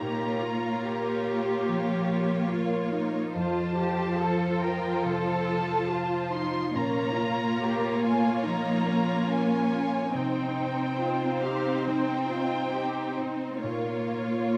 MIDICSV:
0, 0, Header, 1, 6, 480
1, 0, Start_track
1, 0, Tempo, 834492
1, 11, Time_signature, 4, 2, 24, 8
1, 1931, Tempo, 847458
1, 5771, Tempo, 865801
1, 7211, Tempo, 896861
1, 8196, End_track
2, 0, Start_track
2, 0, Title_t, "Violin section"
2, 0, Program_c, 0, 48
2, 0, Note_on_c, 0, 82, 70
2, 1185, Note_off_c, 0, 82, 0
2, 1928, Note_on_c, 0, 81, 82
2, 2623, Note_off_c, 0, 81, 0
2, 2643, Note_on_c, 0, 79, 68
2, 2886, Note_off_c, 0, 79, 0
2, 2890, Note_on_c, 0, 81, 84
2, 3611, Note_on_c, 0, 84, 82
2, 3613, Note_off_c, 0, 81, 0
2, 3853, Note_off_c, 0, 84, 0
2, 3856, Note_on_c, 0, 82, 79
2, 4578, Note_off_c, 0, 82, 0
2, 4578, Note_on_c, 0, 80, 71
2, 4813, Note_off_c, 0, 80, 0
2, 4816, Note_on_c, 0, 82, 80
2, 5283, Note_off_c, 0, 82, 0
2, 5294, Note_on_c, 0, 80, 82
2, 5773, Note_off_c, 0, 80, 0
2, 5774, Note_on_c, 0, 79, 70
2, 6485, Note_on_c, 0, 77, 63
2, 6491, Note_off_c, 0, 79, 0
2, 6724, Note_on_c, 0, 79, 77
2, 6727, Note_off_c, 0, 77, 0
2, 7448, Note_off_c, 0, 79, 0
2, 7451, Note_on_c, 0, 72, 58
2, 7682, Note_on_c, 0, 73, 59
2, 7690, Note_off_c, 0, 72, 0
2, 8196, Note_off_c, 0, 73, 0
2, 8196, End_track
3, 0, Start_track
3, 0, Title_t, "Violin section"
3, 0, Program_c, 1, 48
3, 9, Note_on_c, 1, 65, 52
3, 10, Note_on_c, 1, 73, 47
3, 1907, Note_off_c, 1, 65, 0
3, 1907, Note_off_c, 1, 73, 0
3, 1930, Note_on_c, 1, 65, 53
3, 1930, Note_on_c, 1, 72, 51
3, 3830, Note_off_c, 1, 72, 0
3, 3831, Note_off_c, 1, 65, 0
3, 3864, Note_on_c, 1, 65, 55
3, 3865, Note_on_c, 1, 73, 55
3, 5755, Note_off_c, 1, 65, 0
3, 5756, Note_off_c, 1, 73, 0
3, 5776, Note_on_c, 1, 63, 50
3, 5776, Note_on_c, 1, 72, 56
3, 7670, Note_off_c, 1, 63, 0
3, 7690, Note_on_c, 1, 73, 44
3, 7691, Note_off_c, 1, 72, 0
3, 7691, Note_on_c, 1, 65, 44
3, 8196, Note_off_c, 1, 65, 0
3, 8196, Note_off_c, 1, 73, 0
3, 8196, End_track
4, 0, Start_track
4, 0, Title_t, "Cello section"
4, 0, Program_c, 2, 48
4, 14, Note_on_c, 2, 67, 49
4, 246, Note_off_c, 2, 67, 0
4, 250, Note_on_c, 2, 65, 53
4, 490, Note_off_c, 2, 65, 0
4, 490, Note_on_c, 2, 67, 56
4, 1443, Note_on_c, 2, 65, 52
4, 1450, Note_off_c, 2, 67, 0
4, 1686, Note_off_c, 2, 65, 0
4, 1688, Note_on_c, 2, 63, 51
4, 1930, Note_off_c, 2, 63, 0
4, 1932, Note_on_c, 2, 65, 57
4, 2170, Note_off_c, 2, 65, 0
4, 2173, Note_on_c, 2, 67, 59
4, 2405, Note_off_c, 2, 67, 0
4, 2410, Note_on_c, 2, 69, 63
4, 2648, Note_off_c, 2, 69, 0
4, 2649, Note_on_c, 2, 70, 62
4, 2889, Note_off_c, 2, 70, 0
4, 2892, Note_on_c, 2, 69, 69
4, 3373, Note_off_c, 2, 69, 0
4, 3374, Note_on_c, 2, 65, 59
4, 3614, Note_off_c, 2, 65, 0
4, 3615, Note_on_c, 2, 63, 52
4, 3853, Note_on_c, 2, 61, 54
4, 3855, Note_off_c, 2, 63, 0
4, 4093, Note_off_c, 2, 61, 0
4, 4093, Note_on_c, 2, 65, 57
4, 4335, Note_off_c, 2, 65, 0
4, 4337, Note_on_c, 2, 67, 55
4, 4578, Note_off_c, 2, 67, 0
4, 4580, Note_on_c, 2, 65, 60
4, 4814, Note_off_c, 2, 65, 0
4, 4819, Note_on_c, 2, 63, 55
4, 5055, Note_off_c, 2, 63, 0
4, 5059, Note_on_c, 2, 61, 52
4, 5773, Note_on_c, 2, 63, 55
4, 5775, Note_off_c, 2, 61, 0
4, 6241, Note_off_c, 2, 63, 0
4, 6253, Note_on_c, 2, 65, 49
4, 6492, Note_off_c, 2, 65, 0
4, 6493, Note_on_c, 2, 67, 54
4, 6730, Note_on_c, 2, 63, 49
4, 6731, Note_off_c, 2, 67, 0
4, 6965, Note_on_c, 2, 65, 47
4, 6971, Note_off_c, 2, 63, 0
4, 7210, Note_on_c, 2, 67, 52
4, 7211, Note_off_c, 2, 65, 0
4, 7447, Note_on_c, 2, 63, 47
4, 7449, Note_off_c, 2, 67, 0
4, 7687, Note_on_c, 2, 65, 49
4, 7688, Note_off_c, 2, 63, 0
4, 8196, Note_off_c, 2, 65, 0
4, 8196, End_track
5, 0, Start_track
5, 0, Title_t, "Harp"
5, 0, Program_c, 3, 46
5, 8, Note_on_c, 3, 46, 52
5, 246, Note_on_c, 3, 65, 38
5, 485, Note_on_c, 3, 70, 36
5, 721, Note_off_c, 3, 65, 0
5, 728, Note_on_c, 3, 65, 36
5, 967, Note_on_c, 3, 53, 36
5, 1198, Note_off_c, 3, 65, 0
5, 1205, Note_on_c, 3, 65, 44
5, 1437, Note_off_c, 3, 70, 0
5, 1444, Note_on_c, 3, 70, 43
5, 1677, Note_off_c, 3, 65, 0
5, 1684, Note_on_c, 3, 65, 39
5, 1927, Note_on_c, 3, 41, 59
5, 1947, Note_off_c, 3, 70, 0
5, 1948, Note_off_c, 3, 46, 0
5, 2156, Note_off_c, 3, 65, 0
5, 2163, Note_on_c, 3, 65, 40
5, 2404, Note_on_c, 3, 72, 42
5, 2637, Note_off_c, 3, 65, 0
5, 2644, Note_on_c, 3, 65, 42
5, 2884, Note_on_c, 3, 48, 40
5, 3122, Note_off_c, 3, 65, 0
5, 3128, Note_on_c, 3, 65, 50
5, 3191, Note_off_c, 3, 53, 0
5, 3362, Note_off_c, 3, 72, 0
5, 3369, Note_on_c, 3, 72, 44
5, 3605, Note_off_c, 3, 65, 0
5, 3612, Note_on_c, 3, 65, 40
5, 3851, Note_on_c, 3, 46, 57
5, 3870, Note_off_c, 3, 48, 0
5, 3871, Note_off_c, 3, 41, 0
5, 3871, Note_off_c, 3, 72, 0
5, 4087, Note_off_c, 3, 65, 0
5, 4094, Note_on_c, 3, 65, 39
5, 4337, Note_on_c, 3, 70, 41
5, 4574, Note_off_c, 3, 65, 0
5, 4580, Note_on_c, 3, 65, 43
5, 4820, Note_on_c, 3, 53, 36
5, 5046, Note_off_c, 3, 65, 0
5, 5053, Note_on_c, 3, 65, 50
5, 5286, Note_off_c, 3, 70, 0
5, 5293, Note_on_c, 3, 70, 45
5, 5527, Note_off_c, 3, 65, 0
5, 5534, Note_on_c, 3, 65, 42
5, 5772, Note_on_c, 3, 48, 56
5, 5790, Note_off_c, 3, 46, 0
5, 5792, Note_off_c, 3, 65, 0
5, 5792, Note_off_c, 3, 70, 0
5, 5793, Note_off_c, 3, 53, 0
5, 6009, Note_on_c, 3, 63, 38
5, 6251, Note_on_c, 3, 75, 41
5, 6484, Note_off_c, 3, 63, 0
5, 6490, Note_on_c, 3, 63, 36
5, 6728, Note_on_c, 3, 55, 31
5, 6961, Note_off_c, 3, 63, 0
5, 6967, Note_on_c, 3, 63, 39
5, 7209, Note_off_c, 3, 75, 0
5, 7215, Note_on_c, 3, 75, 39
5, 7443, Note_off_c, 3, 63, 0
5, 7450, Note_on_c, 3, 63, 35
5, 7690, Note_on_c, 3, 46, 47
5, 7708, Note_off_c, 3, 55, 0
5, 7709, Note_off_c, 3, 48, 0
5, 7709, Note_off_c, 3, 63, 0
5, 7710, Note_off_c, 3, 75, 0
5, 7932, Note_on_c, 3, 65, 35
5, 8171, Note_on_c, 3, 73, 37
5, 8196, Note_off_c, 3, 46, 0
5, 8196, Note_off_c, 3, 65, 0
5, 8196, Note_off_c, 3, 73, 0
5, 8196, End_track
6, 0, Start_track
6, 0, Title_t, "Viola section"
6, 0, Program_c, 4, 48
6, 6, Note_on_c, 4, 58, 51
6, 1905, Note_off_c, 4, 58, 0
6, 1925, Note_on_c, 4, 53, 63
6, 3828, Note_off_c, 4, 53, 0
6, 3852, Note_on_c, 4, 58, 66
6, 5749, Note_off_c, 4, 58, 0
6, 5767, Note_on_c, 4, 60, 58
6, 7666, Note_off_c, 4, 60, 0
6, 7689, Note_on_c, 4, 58, 54
6, 8196, Note_off_c, 4, 58, 0
6, 8196, End_track
0, 0, End_of_file